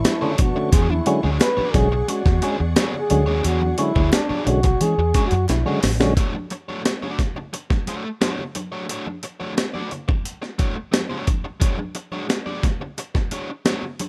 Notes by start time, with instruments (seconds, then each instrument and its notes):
Already playing: trombone E4, string section B4 D5 A5 C#6
0.05 muted overdriven electric guitar stroke, snare, clap, closed hi-hat, muted conga, high conga
0.21 tonewheel organ D3 A3 C#4, overdriven electric guitar A3 D4 F#4 C#5, low conga
0.32 trombone A4
0.38 tonewheel organ B2, trombone F#4, muted overdriven electric guitar stroke, kick, closed hi-hat, muted conga, high conga
0.56 tonewheel organ D3 A3 C#4, muted overdriven electric guitar stroke
0.72 fingered electric bass E2, overdriven electric guitar D4 F#4 G#4 C#5, string section G#4 D5 F#5, trombone G#4, kick, closed hi-hat
0.89 trombone E4, muted overdriven electric guitar stroke, high conga
1.06 tonewheel organ D3 F#3 G#3 C#4, muted overdriven electric guitar stroke, closed hi-hat, muted conga
1.23 fingered electric bass D2, tonewheel organ G#3 C#4, overdriven electric guitar D4 F#4 G#4 C#5, high conga
1.40 tonewheel organ G#3 C#4, trombone B4, muted overdriven electric guitar stroke, snare, clap, closed hi-hat
1.57 overdriven electric guitar D4 F#4 G#4 D5, muted fingered electric bass stroke, high conga
1.74 fingered electric bass B1, tonewheel organ D3 F#3 G#3 C#4, trombone G#4, muted overdriven electric guitar stroke, kick, snare, closed hi-hat
1.91 muted overdriven electric guitar stroke, low conga
2.08 tonewheel organ G#3 C#4, trombone F#4, muted overdriven electric guitar stroke, closed hi-hat, muted conga
2.25 fingered electric bass E2, muted overdriven electric guitar stroke, kick, snare
2.42 tonewheel organ G#3 C#4, overdriven electric guitar D4 F#4 G#4 C#5, closed hi-hat
2.59 fingered electric bass E2, muted overdriven electric guitar stroke
2.76 overdriven electric guitar D4 F#4 G#4 C#5, snare, clap, closed hi-hat, muted conga, high conga
2.94 low conga
3.00 trombone G#4
3.10 fingered electric bass D2, tonewheel organ D3 F#3 G#3 C#4, muted overdriven electric guitar stroke, closed hi-hat, muted conga, high conga
3.26 fingered electric bass D#2, tonewheel organ G#3 C#4, overdriven electric guitar D4 F#4 G#4 C#5
3.43 fingered electric bass E2, overdriven electric guitar D4 F#4 G#4 C#5, trombone F#4, closed hi-hat, muted conga
3.61 muted overdriven electric guitar stroke, high conga
3.78 tonewheel organ D3 F#3 G#3 C#4, trombone E4, muted overdriven electric guitar stroke, closed hi-hat, muted conga
3.95 fingered electric bass D2, tonewheel organ G#3 C#4, overdriven electric guitar D4 F#4 G#4 C#5, kick, high conga
4.13 tonewheel organ G#3 C#4, trombone D4, muted overdriven electric guitar stroke, snare, clap, closed hi-hat
4.29 overdriven electric guitar D4 F#4 G#4 D5, muted fingered electric bass stroke, high conga
4.46 fingered electric bass B1, tonewheel organ D3 F#3 G#3 C#4, trombone F#4, muted overdriven electric guitar stroke, closed hi-hat, muted conga, low conga
4.63 muted overdriven electric guitar stroke, kick, closed hi-hat, low conga
4.81 fingered electric bass E3, tonewheel organ G#3 C#4, trombone G#4, closed hi-hat, muted conga
4.98 fingered electric bass E2, muted overdriven electric guitar stroke
5.14 tonewheel organ G#3 C#4, overdriven electric guitar D4 F#4 G#4 C#5, kick, closed hi-hat, muted conga
5.27 trombone F#4, closed hi-hat
5.32 fingered electric bass F#2, muted overdriven electric guitar stroke
5.49 fingered electric bass B1, trombone E4, muted overdriven electric guitar stroke, snare, clap, closed hi-hat, muted conga, high conga
5.66 tonewheel organ D3 F#3 G#3 C#4, overdriven electric guitar D4 F#4 G#4 C#5, low conga
5.83 fingered electric bass A1, muted overdriven electric guitar stroke, snare, open hi-hat, muted conga, high conga
6.00 fingered electric bass A#1, tonewheel organ D3 F#3 G#3 C#4, muted overdriven electric guitar stroke, snare
6.17 overdriven electric guitar A3 D4 F#4 C#5, kick, closed hi-hat, muted conga
6.34 muted overdriven electric guitar stroke, high conga
6.50 muted overdriven electric guitar stroke, closed hi-hat, muted conga
6.69 overdriven electric guitar A3 D4 F#4 C#5, high conga
6.85 muted overdriven electric guitar stroke, snare, closed hi-hat, muted conga
7.02 overdriven electric guitar A3 D4 F#4 D5, high conga
7.19 muted overdriven electric guitar stroke, kick, snare, closed hi-hat, muted conga, low conga
7.36 muted overdriven electric guitar stroke, low conga
7.53 muted overdriven electric guitar stroke, closed hi-hat, muted conga
7.70 muted overdriven electric guitar stroke, kick, snare
7.87 overdriven electric guitar A3 D4 F#4 C#5, closed hi-hat, muted conga
8.04 muted overdriven electric guitar stroke
8.21 overdriven electric guitar A3 D4 F#4 C#5, snare, closed hi-hat, muted conga, high conga
8.39 low conga
8.55 muted overdriven electric guitar stroke, closed hi-hat, muted conga, high conga
8.72 overdriven electric guitar A3 D4 F#4 C#5
8.89 overdriven electric guitar A3 D4 F#4 C#5, closed hi-hat
9.06 muted overdriven electric guitar stroke, high conga
9.23 muted overdriven electric guitar stroke, closed hi-hat
9.40 overdriven electric guitar A3 D4 F#4 C#5, high conga
9.57 muted overdriven electric guitar stroke, snare, closed hi-hat, muted conga
9.74 overdriven electric guitar A3 D4 F#4 D5, high conga
9.91 muted overdriven electric guitar stroke, closed hi-hat, muted conga, low conga
10.08 muted overdriven electric guitar stroke, kick, low conga
10.25 closed hi-hat
10.42 muted overdriven electric guitar stroke, snare
10.59 overdriven electric guitar A3 D4 F#4 C#5, kick, closed hi-hat, muted conga
10.76 muted overdriven electric guitar stroke
10.92 muted overdriven electric guitar stroke, snare, closed hi-hat, muted conga, high conga
11.10 overdriven electric guitar A3 D4 F#4 C#5, low conga
11.27 muted overdriven electric guitar stroke, kick, closed hi-hat, high conga
11.44 muted overdriven electric guitar stroke
11.60 overdriven electric guitar G#3 D4 F#4 C#5, kick, closed hi-hat, muted conga
11.78 muted overdriven electric guitar stroke, high conga
11.95 muted overdriven electric guitar stroke, closed hi-hat
12.12 overdriven electric guitar G#3 D4 F#4 C#5, high conga
12.29 muted overdriven electric guitar stroke, snare, closed hi-hat, muted conga
12.46 overdriven electric guitar G#3 D4 F#4 D5, high conga
12.63 muted overdriven electric guitar stroke, kick, snare, closed hi-hat, low conga
12.80 muted overdriven electric guitar stroke, low conga
12.97 muted overdriven electric guitar stroke, closed hi-hat, muted conga
13.15 muted overdriven electric guitar stroke, kick, snare
13.31 overdriven electric guitar G#3 D4 F#4 C#5, closed hi-hat
13.50 muted overdriven electric guitar stroke
13.65 overdriven electric guitar G#3 D4 F#4 C#5, snare, closed hi-hat, muted conga, high conga
13.83 low conga
13.99 muted overdriven electric guitar stroke, closed hi-hat, muted conga, high conga